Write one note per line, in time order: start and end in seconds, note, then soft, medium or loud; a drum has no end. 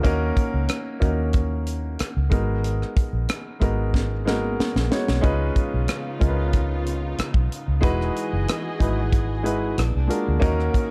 0.03 0.30 D#2 medium
0.03 0.80 A#3 medium
0.03 0.80 C#4 medium
0.03 0.80 D#4 medium
0.03 0.81 F#4 medium
0.03 0.81 A#4 loud
0.03 kick medium
0.03 closed hi-hat medium
0.37 kick medium
0.37 closed hi-hat medium
0.54 0.66 C#2 medium
0.68 cross-stick loud
0.68 closed hi-hat loud
1.00 1.95 D#2 medium
1.00 2.02 A#3 medium
1.00 2.02 C#4 medium
1.00 2.03 D#4 medium
1.00 2.03 F#4 medium
1.00 2.03 A#4 medium
1.00 kick medium
1.00 closed hi-hat medium
1.33 kick medium
1.33 closed hi-hat medium
1.67 closed hi-hat medium
1.99 muted fingered electric bass stroke soft
1.99 cross-stick medium
1.99 closed hi-hat medium
2.17 2.29 C#2 medium
2.30 2.82 G#1 medium
2.30 3.34 G#3 medium
2.30 3.35 B3 medium
2.30 3.35 D#4 medium
2.30 3.36 F#4 medium
2.30 3.35 A#4 medium
2.30 kick loud
2.30 closed hi-hat medium
2.64 closed hi-hat medium
2.82 cross-stick soft
2.97 kick loud
2.97 closed hi-hat medium
3.13 3.25 A#1 medium
3.29 cross-stick loud
3.29 closed hi-hat medium
3.60 4.55 G#1 medium
3.60 4.11 G#3 medium
3.60 4.12 B3 medium
3.60 4.12 D#4 medium
3.60 4.12 F#4 medium
3.60 4.12 A#4 medium
3.60 kick medium
3.60 closed hi-hat medium
3.94 kick medium
3.94 snare soft
4.25 4.76 G#3 medium
4.25 4.32 A#3 medium
4.25 4.77 D#4 medium
4.25 4.77 F#4 medium
4.25 4.77 A#4 medium
4.25 snare medium
4.32 4.80 B3 medium
4.60 muted fingered electric bass stroke soft
4.60 snare medium
4.76 4.88 A#1 medium
4.76 snare medium
4.90 5.16 G#3 medium
4.90 5.16 B3 medium
4.90 5.16 D#4 medium
4.90 5.17 F#4 medium
4.90 5.17 C#5 medium
4.90 snare medium
5.08 5.21 B1 medium
5.08 snare medium
5.21 5.49 C#2 medium
5.21 7.81 C#3 medium
5.21 5.98 G#3 loud
5.21 7.81 B3 medium
5.21 5.99 C#4 medium
5.21 5.99 D#4 medium
5.21 7.81 D#4 medium
5.21 5.99 F4 medium
5.21 7.81 F4 medium
5.21 6.00 B4 loud
5.21 kick loud
5.21 closed hi-hat medium
5.56 kick medium
5.56 closed hi-hat medium
5.74 5.86 B1 medium
5.88 cross-stick loud
5.88 closed hi-hat medium
6.19 7.14 C#2 medium
6.19 7.21 G#3 medium
6.19 7.21 C#4 medium
6.19 7.22 D#4 medium
6.19 7.22 F4 medium
6.19 6.28 A#4 medium
6.19 kick medium
6.19 closed hi-hat medium
6.28 7.26 B4 medium
6.53 kick medium
6.53 closed hi-hat medium
6.86 closed hi-hat medium
7.18 muted fingered electric bass stroke soft
7.18 cross-stick medium
7.18 closed hi-hat medium
7.34 7.47 B1 medium
7.34 kick medium
7.52 closed hi-hat medium
7.68 7.80 C#2 medium
7.81 8.09 E1 medium
7.81 9.76 E3 medium
7.81 8.58 G#3 loud
7.81 8.58 D#4 medium
7.81 8.58 E4 medium
7.81 8.59 F#4 loud
7.81 9.76 F#4 medium
7.81 9.76 G#4 medium
7.81 8.59 B4 loud
7.81 9.76 D#5 medium
7.81 kick loud
7.81 closed hi-hat medium
8.01 cross-stick soft
8.16 closed hi-hat medium
8.33 8.45 F#1 medium
8.48 cross-stick loud
8.48 closed hi-hat medium
8.79 9.74 G#1 medium
8.79 9.30 G#3 medium
8.79 9.31 D#4 medium
8.79 9.31 E4 medium
8.79 9.31 F#4 medium
8.79 9.32 B4 medium
8.79 kick medium
8.79 closed hi-hat medium
9.12 kick medium
9.12 closed hi-hat medium
9.43 9.77 G#3 medium
9.43 9.77 D#4 medium
9.43 9.77 E4 medium
9.43 9.77 F#4 medium
9.43 9.78 B4 medium
9.43 closed hi-hat medium
9.78 9.90 A#1 medium
9.78 10.42 G#3 medium
9.78 10.42 A#3 medium
9.78 10.42 D4 medium
9.78 cross-stick medium
9.78 closed hi-hat medium
9.95 10.07 C2 medium
10.07 10.34 G#3 medium
10.07 10.34 D4 medium
10.07 10.35 F4 medium
10.07 10.35 F#4 medium
10.07 10.35 A#4 medium
10.07 closed hi-hat medium
10.28 10.40 D2 medium
10.40 10.91 D#3 medium
10.40 10.91 A#3 loud
10.40 10.91 C#4 medium
10.40 10.91 D#4 medium
10.40 10.91 F#4 medium
10.40 10.91 A#4 loud
10.40 kick loud
10.40 closed hi-hat medium
10.60 cross-stick soft
10.74 kick medium
10.74 closed hi-hat medium